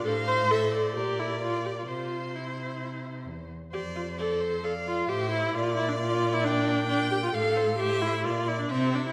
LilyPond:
<<
  \new Staff \with { instrumentName = "Violin" } { \time 4/4 \key f \major \tempo 4 = 132 c''2 bes'4 d''4 | c''2.~ c''8 r8 | d''4 c''4 d''4 c''4 | d''2. g''4 |
f''4 e''4 d''4 c''4 | }
  \new Staff \with { instrumentName = "Violin" } { \time 4/4 \key f \major f''4 e''8 d''2~ d''8 | c''2.~ c''8 r8 | c''4 d''8 c''8 f''4 e''4 | d''2 g''2 |
f''8 c''4. d''4 e''4 | }
  \new Staff \with { instrumentName = "Viola" } { \time 4/4 \key f \major a'8 c''8 a'4 g'8 e'8 f'8 g'16 f'16 | f'4 e'2 r4 | g'8 f'8 a'4 a'8 f'8 g'8 e'8 | f'8 e'16 d'16 f'8. e'16 d'4 d'8 g'16 f'16 |
a'4 g'8 e'8 f'8 e'16 d'16 c'8 d'16 e'16 | }
  \new Staff \with { instrumentName = "Cello" } { \clef bass \time 4/4 \key f \major a,2 bes,2 | c2. e,8 r8 | f,2. a,4 | bes,1 |
a,2 bes,4 c4 | }
>>